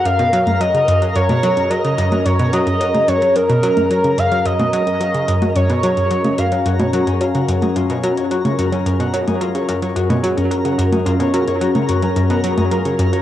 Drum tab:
HH |xxxxxxxxxxxxxxxx|xxxxxxxxxxxxxxxx|xxxxxxxxxxxxxxxx|xxxxxxxxxxxxxxxx|
CG |---o-----o-----o|-----o-----o----|-o-----o-----o--|-o-----o-----o--|

HH |xxxxxxxxxxxxxxxx|xxxxxxxxxxxxxxxx|
CG |---o-----o-----o|-----o-----o----|